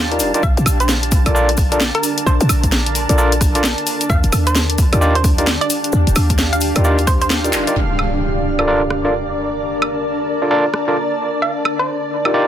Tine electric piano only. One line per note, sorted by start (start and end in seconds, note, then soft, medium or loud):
0.12 0.31 D#4 medium
0.12 0.31 F4 medium
0.12 0.31 G4 medium
0.12 0.31 A#4 medium
0.12 0.31 D5 medium
0.34 0.42 D#4 medium
0.34 0.42 F4 medium
0.34 0.42 G4 medium
0.34 0.42 A#4 medium
0.34 0.42 D5 loud
1.26 1.33 D4 medium
1.26 1.33 F4 medium
1.26 1.33 A4 medium
1.26 1.33 A#4 medium
1.26 1.33 D5 medium
1.35 1.49 D4 medium
1.35 1.49 F4 medium
1.35 1.49 A4 medium
1.35 1.49 A#4 medium
1.35 1.49 D5 loud
1.72 1.80 D4 medium
1.72 1.80 F4 medium
1.72 1.80 A4 medium
1.72 1.80 A#4 medium
1.72 1.80 D5 loud
3.09 3.17 D4 medium
3.09 3.17 F4 medium
3.09 3.17 A4 medium
3.09 3.17 A#4 medium
3.09 3.17 D5 medium
3.18 3.32 D4 loud
3.18 3.32 F4 medium
3.18 3.32 A4 medium
3.18 3.32 A#4 medium
3.18 3.32 D5 loud
3.55 3.64 D4 medium
3.55 3.64 F4 medium
3.55 3.64 A4 medium
3.55 3.64 A#4 medium
3.55 3.64 D5 loud
4.92 5.00 D#4 medium
4.92 5.00 F4 medium
4.92 5.00 G4 medium
4.92 5.00 A#4 medium
4.92 5.00 D5 medium
5.01 5.15 D#4 medium
5.01 5.15 F4 medium
5.01 5.15 G4 medium
5.01 5.15 A#4 medium
5.01 5.15 D5 loud
5.38 5.47 D#4 medium
5.38 5.47 F4 medium
5.38 5.47 G4 medium
5.38 5.47 A#4 medium
5.38 5.47 D5 loud
6.76 6.83 D#4 medium
6.76 6.83 F4 medium
6.76 6.83 G4 medium
6.76 6.83 A#4 medium
6.76 6.83 D5 medium
6.84 6.98 D#4 medium
6.84 6.98 F4 medium
6.84 6.98 G4 medium
6.84 6.98 A#4 medium
6.84 6.98 D5 loud
7.44 7.64 D#4 medium
7.44 7.64 F4 medium
7.44 7.64 G4 medium
7.44 7.64 A#4 medium
7.44 7.64 D5 medium
7.67 7.75 D#4 loud
7.67 7.75 F4 medium
7.67 7.75 G4 medium
7.67 7.75 A#4 medium
7.67 7.75 D5 loud
8.59 8.66 D4 medium
8.59 8.66 F4 medium
8.59 8.66 A4 medium
8.59 8.66 A#4 medium
8.59 8.66 D5 medium
8.68 8.81 D4 medium
8.68 8.81 F4 medium
8.68 8.81 A4 medium
8.68 8.81 A#4 medium
8.68 8.81 D5 loud
9.05 9.13 D4 medium
9.05 9.13 F4 medium
9.05 9.13 A4 medium
9.05 9.13 A#4 medium
9.05 9.13 D5 loud
10.42 10.49 D4 medium
10.42 10.49 F4 medium
10.42 10.49 A4 medium
10.42 10.49 A#4 medium
10.42 10.49 D5 medium
10.51 10.65 D4 medium
10.51 10.65 F4 medium
10.51 10.65 A4 medium
10.51 10.65 A#4 medium
10.51 10.65 D5 loud
10.88 10.96 D4 medium
10.88 10.96 F4 medium
10.88 10.96 A4 medium
10.88 10.96 A#4 medium
10.88 10.96 D5 loud
12.25 12.33 D#4 medium
12.25 12.33 F4 medium
12.25 12.33 G4 medium
12.25 12.33 A#4 medium
12.25 12.33 D5 medium
12.34 12.47 D#4 medium
12.34 12.47 F4 medium
12.34 12.47 G4 medium
12.34 12.47 A#4 medium
12.34 12.47 D5 loud